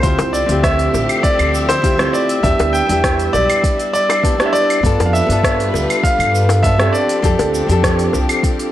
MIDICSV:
0, 0, Header, 1, 6, 480
1, 0, Start_track
1, 0, Tempo, 600000
1, 30, Time_signature, 4, 2, 24, 8
1, 6975, End_track
2, 0, Start_track
2, 0, Title_t, "Grand piano"
2, 0, Program_c, 0, 0
2, 23, Note_on_c, 0, 72, 98
2, 249, Note_off_c, 0, 72, 0
2, 263, Note_on_c, 0, 74, 93
2, 489, Note_off_c, 0, 74, 0
2, 506, Note_on_c, 0, 76, 100
2, 984, Note_on_c, 0, 74, 103
2, 1002, Note_off_c, 0, 76, 0
2, 1348, Note_on_c, 0, 72, 115
2, 1361, Note_off_c, 0, 74, 0
2, 1704, Note_on_c, 0, 74, 97
2, 1718, Note_off_c, 0, 72, 0
2, 1945, Note_on_c, 0, 76, 108
2, 1954, Note_off_c, 0, 74, 0
2, 2182, Note_on_c, 0, 79, 102
2, 2194, Note_off_c, 0, 76, 0
2, 2664, Note_on_c, 0, 74, 109
2, 2680, Note_off_c, 0, 79, 0
2, 3135, Note_off_c, 0, 74, 0
2, 3147, Note_on_c, 0, 74, 114
2, 3565, Note_on_c, 0, 76, 75
2, 3587, Note_off_c, 0, 74, 0
2, 3622, Note_on_c, 0, 74, 123
2, 3624, Note_off_c, 0, 76, 0
2, 4046, Note_on_c, 0, 77, 76
2, 4064, Note_off_c, 0, 74, 0
2, 4105, Note_off_c, 0, 77, 0
2, 4105, Note_on_c, 0, 76, 102
2, 4828, Note_on_c, 0, 77, 101
2, 4849, Note_off_c, 0, 76, 0
2, 5302, Note_on_c, 0, 76, 100
2, 5323, Note_off_c, 0, 77, 0
2, 5529, Note_off_c, 0, 76, 0
2, 5541, Note_on_c, 0, 74, 93
2, 6975, Note_off_c, 0, 74, 0
2, 6975, End_track
3, 0, Start_track
3, 0, Title_t, "Nylon-string guitar"
3, 0, Program_c, 1, 24
3, 13, Note_on_c, 1, 60, 93
3, 21, Note_on_c, 1, 64, 84
3, 28, Note_on_c, 1, 65, 84
3, 35, Note_on_c, 1, 67, 95
3, 355, Note_off_c, 1, 60, 0
3, 359, Note_off_c, 1, 64, 0
3, 363, Note_off_c, 1, 65, 0
3, 366, Note_off_c, 1, 67, 0
3, 368, Note_on_c, 1, 60, 77
3, 383, Note_on_c, 1, 64, 72
3, 398, Note_on_c, 1, 65, 70
3, 414, Note_on_c, 1, 67, 84
3, 1434, Note_off_c, 1, 60, 0
3, 1441, Note_off_c, 1, 64, 0
3, 1449, Note_off_c, 1, 65, 0
3, 1455, Note_on_c, 1, 60, 78
3, 1457, Note_off_c, 1, 67, 0
3, 1462, Note_on_c, 1, 64, 67
3, 1470, Note_on_c, 1, 65, 68
3, 1477, Note_on_c, 1, 67, 81
3, 1567, Note_off_c, 1, 60, 0
3, 1571, Note_off_c, 1, 64, 0
3, 1575, Note_off_c, 1, 65, 0
3, 1578, Note_off_c, 1, 67, 0
3, 1581, Note_on_c, 1, 60, 75
3, 1589, Note_on_c, 1, 64, 74
3, 1598, Note_on_c, 1, 65, 73
3, 1605, Note_on_c, 1, 67, 92
3, 1916, Note_off_c, 1, 60, 0
3, 1920, Note_off_c, 1, 64, 0
3, 1924, Note_off_c, 1, 65, 0
3, 1928, Note_off_c, 1, 67, 0
3, 1940, Note_on_c, 1, 59, 92
3, 1948, Note_on_c, 1, 62, 86
3, 1955, Note_on_c, 1, 64, 88
3, 1963, Note_on_c, 1, 67, 104
3, 2279, Note_off_c, 1, 59, 0
3, 2283, Note_off_c, 1, 62, 0
3, 2286, Note_off_c, 1, 64, 0
3, 2290, Note_off_c, 1, 67, 0
3, 2290, Note_on_c, 1, 59, 83
3, 2306, Note_on_c, 1, 62, 72
3, 2322, Note_on_c, 1, 64, 74
3, 2335, Note_on_c, 1, 67, 91
3, 3355, Note_off_c, 1, 59, 0
3, 3363, Note_off_c, 1, 62, 0
3, 3371, Note_off_c, 1, 64, 0
3, 3377, Note_off_c, 1, 67, 0
3, 3383, Note_on_c, 1, 59, 79
3, 3391, Note_on_c, 1, 62, 73
3, 3397, Note_on_c, 1, 64, 74
3, 3404, Note_on_c, 1, 67, 86
3, 3491, Note_off_c, 1, 59, 0
3, 3495, Note_off_c, 1, 62, 0
3, 3499, Note_off_c, 1, 64, 0
3, 3502, Note_off_c, 1, 67, 0
3, 3505, Note_on_c, 1, 59, 77
3, 3515, Note_on_c, 1, 62, 72
3, 3519, Note_on_c, 1, 64, 76
3, 3529, Note_on_c, 1, 67, 88
3, 3838, Note_off_c, 1, 59, 0
3, 3842, Note_off_c, 1, 62, 0
3, 3844, Note_off_c, 1, 64, 0
3, 3850, Note_off_c, 1, 67, 0
3, 3863, Note_on_c, 1, 59, 94
3, 3870, Note_on_c, 1, 62, 85
3, 3879, Note_on_c, 1, 65, 88
3, 3888, Note_on_c, 1, 69, 107
3, 4200, Note_off_c, 1, 59, 0
3, 4204, Note_off_c, 1, 62, 0
3, 4208, Note_off_c, 1, 65, 0
3, 4212, Note_on_c, 1, 59, 82
3, 4213, Note_off_c, 1, 69, 0
3, 4228, Note_on_c, 1, 62, 73
3, 4242, Note_on_c, 1, 65, 78
3, 4258, Note_on_c, 1, 69, 89
3, 5276, Note_off_c, 1, 59, 0
3, 5284, Note_off_c, 1, 62, 0
3, 5291, Note_off_c, 1, 65, 0
3, 5299, Note_off_c, 1, 69, 0
3, 5301, Note_on_c, 1, 59, 84
3, 5310, Note_on_c, 1, 62, 74
3, 5316, Note_on_c, 1, 65, 74
3, 5325, Note_on_c, 1, 69, 85
3, 5410, Note_off_c, 1, 59, 0
3, 5415, Note_off_c, 1, 62, 0
3, 5418, Note_off_c, 1, 65, 0
3, 5422, Note_off_c, 1, 69, 0
3, 5424, Note_on_c, 1, 60, 77
3, 5432, Note_on_c, 1, 62, 73
3, 5440, Note_on_c, 1, 67, 78
3, 5448, Note_on_c, 1, 69, 84
3, 5757, Note_off_c, 1, 60, 0
3, 5761, Note_off_c, 1, 62, 0
3, 5765, Note_off_c, 1, 67, 0
3, 5769, Note_off_c, 1, 69, 0
3, 5780, Note_on_c, 1, 60, 99
3, 5788, Note_on_c, 1, 62, 87
3, 5795, Note_on_c, 1, 67, 90
3, 5802, Note_on_c, 1, 69, 104
3, 6119, Note_off_c, 1, 60, 0
3, 6123, Note_off_c, 1, 62, 0
3, 6126, Note_off_c, 1, 67, 0
3, 6130, Note_off_c, 1, 69, 0
3, 6132, Note_on_c, 1, 60, 81
3, 6147, Note_on_c, 1, 62, 73
3, 6163, Note_on_c, 1, 67, 77
3, 6178, Note_on_c, 1, 69, 92
3, 6975, Note_off_c, 1, 60, 0
3, 6975, Note_off_c, 1, 62, 0
3, 6975, Note_off_c, 1, 67, 0
3, 6975, Note_off_c, 1, 69, 0
3, 6975, End_track
4, 0, Start_track
4, 0, Title_t, "String section"
4, 0, Program_c, 2, 48
4, 28, Note_on_c, 2, 50, 80
4, 28, Note_on_c, 2, 57, 70
4, 29, Note_on_c, 2, 53, 74
4, 29, Note_on_c, 2, 76, 74
4, 30, Note_on_c, 2, 60, 71
4, 30, Note_on_c, 2, 67, 92
4, 1929, Note_off_c, 2, 50, 0
4, 1929, Note_off_c, 2, 57, 0
4, 1930, Note_off_c, 2, 53, 0
4, 1930, Note_off_c, 2, 60, 0
4, 1930, Note_off_c, 2, 67, 0
4, 1950, Note_on_c, 2, 55, 79
4, 1951, Note_on_c, 2, 62, 75
4, 3838, Note_off_c, 2, 76, 0
4, 3850, Note_off_c, 2, 55, 0
4, 3869, Note_on_c, 2, 55, 86
4, 3870, Note_on_c, 2, 69, 75
4, 3870, Note_on_c, 2, 71, 89
4, 3873, Note_on_c, 2, 65, 78
4, 5533, Note_off_c, 2, 55, 0
4, 5533, Note_off_c, 2, 71, 0
4, 5534, Note_off_c, 2, 65, 0
4, 5546, Note_on_c, 2, 67, 72
4, 5550, Note_on_c, 2, 53, 78
4, 5551, Note_on_c, 2, 60, 72
4, 6975, Note_off_c, 2, 53, 0
4, 6975, Note_off_c, 2, 60, 0
4, 6975, Note_off_c, 2, 62, 0
4, 6975, Note_off_c, 2, 67, 0
4, 6975, Note_off_c, 2, 69, 0
4, 6975, End_track
5, 0, Start_track
5, 0, Title_t, "Upright bass"
5, 0, Program_c, 3, 32
5, 27, Note_on_c, 3, 38, 97
5, 115, Note_off_c, 3, 38, 0
5, 153, Note_on_c, 3, 36, 88
5, 319, Note_off_c, 3, 36, 0
5, 392, Note_on_c, 3, 38, 93
5, 693, Note_off_c, 3, 38, 0
5, 748, Note_on_c, 3, 33, 77
5, 835, Note_off_c, 3, 33, 0
5, 1111, Note_on_c, 3, 38, 90
5, 1653, Note_off_c, 3, 38, 0
5, 1948, Note_on_c, 3, 40, 106
5, 2036, Note_off_c, 3, 40, 0
5, 2074, Note_on_c, 3, 38, 87
5, 2239, Note_off_c, 3, 38, 0
5, 2315, Note_on_c, 3, 40, 93
5, 2615, Note_off_c, 3, 40, 0
5, 2668, Note_on_c, 3, 35, 86
5, 2756, Note_off_c, 3, 35, 0
5, 3868, Note_on_c, 3, 43, 111
5, 3955, Note_off_c, 3, 43, 0
5, 3996, Note_on_c, 3, 41, 88
5, 4161, Note_off_c, 3, 41, 0
5, 4232, Note_on_c, 3, 43, 97
5, 4533, Note_off_c, 3, 43, 0
5, 4590, Note_on_c, 3, 38, 81
5, 4676, Note_off_c, 3, 38, 0
5, 4950, Note_on_c, 3, 43, 97
5, 5492, Note_off_c, 3, 43, 0
5, 5788, Note_on_c, 3, 41, 100
5, 5875, Note_off_c, 3, 41, 0
5, 5911, Note_on_c, 3, 38, 91
5, 6078, Note_off_c, 3, 38, 0
5, 6151, Note_on_c, 3, 41, 100
5, 6453, Note_off_c, 3, 41, 0
5, 6509, Note_on_c, 3, 36, 84
5, 6596, Note_off_c, 3, 36, 0
5, 6975, End_track
6, 0, Start_track
6, 0, Title_t, "Drums"
6, 27, Note_on_c, 9, 46, 50
6, 28, Note_on_c, 9, 36, 108
6, 34, Note_on_c, 9, 82, 43
6, 107, Note_off_c, 9, 46, 0
6, 108, Note_off_c, 9, 36, 0
6, 114, Note_off_c, 9, 82, 0
6, 148, Note_on_c, 9, 60, 89
6, 151, Note_on_c, 9, 46, 28
6, 159, Note_on_c, 9, 82, 21
6, 228, Note_off_c, 9, 60, 0
6, 231, Note_off_c, 9, 46, 0
6, 239, Note_off_c, 9, 82, 0
6, 275, Note_on_c, 9, 82, 81
6, 355, Note_off_c, 9, 82, 0
6, 392, Note_on_c, 9, 46, 45
6, 399, Note_on_c, 9, 82, 36
6, 472, Note_off_c, 9, 46, 0
6, 479, Note_off_c, 9, 82, 0
6, 508, Note_on_c, 9, 36, 106
6, 509, Note_on_c, 9, 37, 69
6, 509, Note_on_c, 9, 46, 52
6, 517, Note_on_c, 9, 82, 42
6, 588, Note_off_c, 9, 36, 0
6, 589, Note_off_c, 9, 37, 0
6, 589, Note_off_c, 9, 46, 0
6, 597, Note_off_c, 9, 82, 0
6, 632, Note_on_c, 9, 46, 29
6, 640, Note_on_c, 9, 82, 23
6, 712, Note_off_c, 9, 46, 0
6, 720, Note_off_c, 9, 82, 0
6, 754, Note_on_c, 9, 60, 61
6, 757, Note_on_c, 9, 82, 74
6, 834, Note_off_c, 9, 60, 0
6, 837, Note_off_c, 9, 82, 0
6, 874, Note_on_c, 9, 46, 41
6, 874, Note_on_c, 9, 75, 76
6, 881, Note_on_c, 9, 82, 33
6, 954, Note_off_c, 9, 46, 0
6, 954, Note_off_c, 9, 75, 0
6, 961, Note_off_c, 9, 82, 0
6, 989, Note_on_c, 9, 36, 110
6, 991, Note_on_c, 9, 46, 56
6, 998, Note_on_c, 9, 82, 46
6, 1069, Note_off_c, 9, 36, 0
6, 1071, Note_off_c, 9, 46, 0
6, 1078, Note_off_c, 9, 82, 0
6, 1114, Note_on_c, 9, 46, 31
6, 1114, Note_on_c, 9, 75, 79
6, 1121, Note_on_c, 9, 82, 22
6, 1194, Note_off_c, 9, 46, 0
6, 1194, Note_off_c, 9, 75, 0
6, 1201, Note_off_c, 9, 82, 0
6, 1237, Note_on_c, 9, 82, 82
6, 1317, Note_off_c, 9, 82, 0
6, 1353, Note_on_c, 9, 60, 89
6, 1355, Note_on_c, 9, 46, 45
6, 1362, Note_on_c, 9, 82, 34
6, 1433, Note_off_c, 9, 60, 0
6, 1435, Note_off_c, 9, 46, 0
6, 1442, Note_off_c, 9, 82, 0
6, 1469, Note_on_c, 9, 36, 101
6, 1470, Note_on_c, 9, 46, 55
6, 1478, Note_on_c, 9, 82, 46
6, 1549, Note_off_c, 9, 36, 0
6, 1550, Note_off_c, 9, 46, 0
6, 1558, Note_off_c, 9, 82, 0
6, 1593, Note_on_c, 9, 37, 73
6, 1593, Note_on_c, 9, 46, 29
6, 1600, Note_on_c, 9, 82, 22
6, 1673, Note_off_c, 9, 37, 0
6, 1673, Note_off_c, 9, 46, 0
6, 1680, Note_off_c, 9, 82, 0
6, 1716, Note_on_c, 9, 82, 80
6, 1796, Note_off_c, 9, 82, 0
6, 1833, Note_on_c, 9, 46, 44
6, 1841, Note_on_c, 9, 82, 36
6, 1913, Note_off_c, 9, 46, 0
6, 1921, Note_off_c, 9, 82, 0
6, 1950, Note_on_c, 9, 36, 101
6, 1950, Note_on_c, 9, 46, 55
6, 1958, Note_on_c, 9, 82, 42
6, 2030, Note_off_c, 9, 36, 0
6, 2030, Note_off_c, 9, 46, 0
6, 2038, Note_off_c, 9, 82, 0
6, 2074, Note_on_c, 9, 46, 31
6, 2078, Note_on_c, 9, 60, 93
6, 2082, Note_on_c, 9, 82, 22
6, 2154, Note_off_c, 9, 46, 0
6, 2158, Note_off_c, 9, 60, 0
6, 2162, Note_off_c, 9, 82, 0
6, 2197, Note_on_c, 9, 82, 77
6, 2277, Note_off_c, 9, 82, 0
6, 2315, Note_on_c, 9, 46, 46
6, 2322, Note_on_c, 9, 82, 33
6, 2395, Note_off_c, 9, 46, 0
6, 2402, Note_off_c, 9, 82, 0
6, 2430, Note_on_c, 9, 36, 104
6, 2430, Note_on_c, 9, 37, 71
6, 2430, Note_on_c, 9, 46, 52
6, 2437, Note_on_c, 9, 82, 39
6, 2510, Note_off_c, 9, 36, 0
6, 2510, Note_off_c, 9, 37, 0
6, 2510, Note_off_c, 9, 46, 0
6, 2517, Note_off_c, 9, 82, 0
6, 2555, Note_on_c, 9, 46, 34
6, 2563, Note_on_c, 9, 82, 22
6, 2635, Note_off_c, 9, 46, 0
6, 2643, Note_off_c, 9, 82, 0
6, 2672, Note_on_c, 9, 60, 53
6, 2678, Note_on_c, 9, 82, 72
6, 2752, Note_off_c, 9, 60, 0
6, 2758, Note_off_c, 9, 82, 0
6, 2796, Note_on_c, 9, 46, 45
6, 2796, Note_on_c, 9, 75, 89
6, 2804, Note_on_c, 9, 82, 33
6, 2876, Note_off_c, 9, 46, 0
6, 2876, Note_off_c, 9, 75, 0
6, 2884, Note_off_c, 9, 82, 0
6, 2909, Note_on_c, 9, 36, 104
6, 2911, Note_on_c, 9, 46, 55
6, 2919, Note_on_c, 9, 82, 42
6, 2989, Note_off_c, 9, 36, 0
6, 2991, Note_off_c, 9, 46, 0
6, 2999, Note_off_c, 9, 82, 0
6, 3036, Note_on_c, 9, 46, 31
6, 3043, Note_on_c, 9, 82, 22
6, 3116, Note_off_c, 9, 46, 0
6, 3123, Note_off_c, 9, 82, 0
6, 3161, Note_on_c, 9, 82, 76
6, 3241, Note_off_c, 9, 82, 0
6, 3276, Note_on_c, 9, 60, 84
6, 3278, Note_on_c, 9, 46, 46
6, 3278, Note_on_c, 9, 75, 87
6, 3286, Note_on_c, 9, 82, 34
6, 3356, Note_off_c, 9, 60, 0
6, 3358, Note_off_c, 9, 46, 0
6, 3358, Note_off_c, 9, 75, 0
6, 3366, Note_off_c, 9, 82, 0
6, 3389, Note_on_c, 9, 36, 101
6, 3397, Note_on_c, 9, 46, 58
6, 3404, Note_on_c, 9, 82, 44
6, 3469, Note_off_c, 9, 36, 0
6, 3477, Note_off_c, 9, 46, 0
6, 3484, Note_off_c, 9, 82, 0
6, 3519, Note_on_c, 9, 37, 75
6, 3519, Note_on_c, 9, 46, 30
6, 3526, Note_on_c, 9, 82, 22
6, 3599, Note_off_c, 9, 37, 0
6, 3599, Note_off_c, 9, 46, 0
6, 3606, Note_off_c, 9, 82, 0
6, 3643, Note_on_c, 9, 82, 79
6, 3723, Note_off_c, 9, 82, 0
6, 3761, Note_on_c, 9, 46, 49
6, 3761, Note_on_c, 9, 75, 68
6, 3769, Note_on_c, 9, 82, 33
6, 3841, Note_off_c, 9, 46, 0
6, 3841, Note_off_c, 9, 75, 0
6, 3849, Note_off_c, 9, 82, 0
6, 3869, Note_on_c, 9, 36, 99
6, 3876, Note_on_c, 9, 46, 55
6, 3884, Note_on_c, 9, 82, 39
6, 3949, Note_off_c, 9, 36, 0
6, 3956, Note_off_c, 9, 46, 0
6, 3964, Note_off_c, 9, 82, 0
6, 4001, Note_on_c, 9, 46, 32
6, 4001, Note_on_c, 9, 60, 81
6, 4008, Note_on_c, 9, 82, 21
6, 4081, Note_off_c, 9, 46, 0
6, 4081, Note_off_c, 9, 60, 0
6, 4088, Note_off_c, 9, 82, 0
6, 4122, Note_on_c, 9, 82, 78
6, 4202, Note_off_c, 9, 82, 0
6, 4239, Note_on_c, 9, 46, 49
6, 4247, Note_on_c, 9, 82, 31
6, 4319, Note_off_c, 9, 46, 0
6, 4327, Note_off_c, 9, 82, 0
6, 4348, Note_on_c, 9, 36, 101
6, 4356, Note_on_c, 9, 37, 75
6, 4356, Note_on_c, 9, 46, 57
6, 4363, Note_on_c, 9, 82, 38
6, 4428, Note_off_c, 9, 36, 0
6, 4436, Note_off_c, 9, 37, 0
6, 4436, Note_off_c, 9, 46, 0
6, 4443, Note_off_c, 9, 82, 0
6, 4481, Note_on_c, 9, 46, 32
6, 4488, Note_on_c, 9, 82, 23
6, 4561, Note_off_c, 9, 46, 0
6, 4568, Note_off_c, 9, 82, 0
6, 4591, Note_on_c, 9, 60, 62
6, 4604, Note_on_c, 9, 82, 74
6, 4671, Note_off_c, 9, 60, 0
6, 4684, Note_off_c, 9, 82, 0
6, 4721, Note_on_c, 9, 46, 47
6, 4721, Note_on_c, 9, 75, 85
6, 4728, Note_on_c, 9, 82, 33
6, 4801, Note_off_c, 9, 46, 0
6, 4801, Note_off_c, 9, 75, 0
6, 4808, Note_off_c, 9, 82, 0
6, 4828, Note_on_c, 9, 36, 111
6, 4838, Note_on_c, 9, 46, 59
6, 4846, Note_on_c, 9, 82, 45
6, 4908, Note_off_c, 9, 36, 0
6, 4918, Note_off_c, 9, 46, 0
6, 4926, Note_off_c, 9, 82, 0
6, 4960, Note_on_c, 9, 46, 31
6, 4960, Note_on_c, 9, 75, 83
6, 4968, Note_on_c, 9, 82, 20
6, 5040, Note_off_c, 9, 46, 0
6, 5040, Note_off_c, 9, 75, 0
6, 5048, Note_off_c, 9, 82, 0
6, 5082, Note_on_c, 9, 82, 76
6, 5162, Note_off_c, 9, 82, 0
6, 5192, Note_on_c, 9, 60, 88
6, 5199, Note_on_c, 9, 46, 47
6, 5206, Note_on_c, 9, 82, 34
6, 5272, Note_off_c, 9, 60, 0
6, 5279, Note_off_c, 9, 46, 0
6, 5286, Note_off_c, 9, 82, 0
6, 5308, Note_on_c, 9, 36, 92
6, 5313, Note_on_c, 9, 46, 57
6, 5321, Note_on_c, 9, 82, 44
6, 5388, Note_off_c, 9, 36, 0
6, 5393, Note_off_c, 9, 46, 0
6, 5401, Note_off_c, 9, 82, 0
6, 5436, Note_on_c, 9, 37, 74
6, 5436, Note_on_c, 9, 46, 32
6, 5444, Note_on_c, 9, 82, 21
6, 5516, Note_off_c, 9, 37, 0
6, 5516, Note_off_c, 9, 46, 0
6, 5524, Note_off_c, 9, 82, 0
6, 5559, Note_on_c, 9, 82, 75
6, 5639, Note_off_c, 9, 82, 0
6, 5675, Note_on_c, 9, 46, 48
6, 5683, Note_on_c, 9, 82, 33
6, 5755, Note_off_c, 9, 46, 0
6, 5763, Note_off_c, 9, 82, 0
6, 5788, Note_on_c, 9, 36, 104
6, 5792, Note_on_c, 9, 46, 56
6, 5799, Note_on_c, 9, 82, 45
6, 5868, Note_off_c, 9, 36, 0
6, 5872, Note_off_c, 9, 46, 0
6, 5879, Note_off_c, 9, 82, 0
6, 5914, Note_on_c, 9, 46, 33
6, 5915, Note_on_c, 9, 60, 77
6, 5922, Note_on_c, 9, 82, 21
6, 5994, Note_off_c, 9, 46, 0
6, 5995, Note_off_c, 9, 60, 0
6, 6002, Note_off_c, 9, 82, 0
6, 6038, Note_on_c, 9, 82, 80
6, 6118, Note_off_c, 9, 82, 0
6, 6157, Note_on_c, 9, 46, 48
6, 6164, Note_on_c, 9, 82, 34
6, 6237, Note_off_c, 9, 46, 0
6, 6244, Note_off_c, 9, 82, 0
6, 6268, Note_on_c, 9, 36, 100
6, 6272, Note_on_c, 9, 37, 76
6, 6272, Note_on_c, 9, 46, 56
6, 6279, Note_on_c, 9, 82, 41
6, 6348, Note_off_c, 9, 36, 0
6, 6352, Note_off_c, 9, 37, 0
6, 6352, Note_off_c, 9, 46, 0
6, 6359, Note_off_c, 9, 82, 0
6, 6393, Note_on_c, 9, 46, 34
6, 6401, Note_on_c, 9, 82, 22
6, 6473, Note_off_c, 9, 46, 0
6, 6481, Note_off_c, 9, 82, 0
6, 6506, Note_on_c, 9, 60, 62
6, 6516, Note_on_c, 9, 82, 71
6, 6586, Note_off_c, 9, 60, 0
6, 6596, Note_off_c, 9, 82, 0
6, 6634, Note_on_c, 9, 46, 47
6, 6634, Note_on_c, 9, 75, 85
6, 6642, Note_on_c, 9, 82, 34
6, 6714, Note_off_c, 9, 46, 0
6, 6714, Note_off_c, 9, 75, 0
6, 6722, Note_off_c, 9, 82, 0
6, 6747, Note_on_c, 9, 36, 104
6, 6751, Note_on_c, 9, 46, 56
6, 6758, Note_on_c, 9, 82, 43
6, 6827, Note_off_c, 9, 36, 0
6, 6831, Note_off_c, 9, 46, 0
6, 6838, Note_off_c, 9, 82, 0
6, 6876, Note_on_c, 9, 46, 32
6, 6883, Note_on_c, 9, 82, 23
6, 6956, Note_off_c, 9, 46, 0
6, 6963, Note_off_c, 9, 82, 0
6, 6975, End_track
0, 0, End_of_file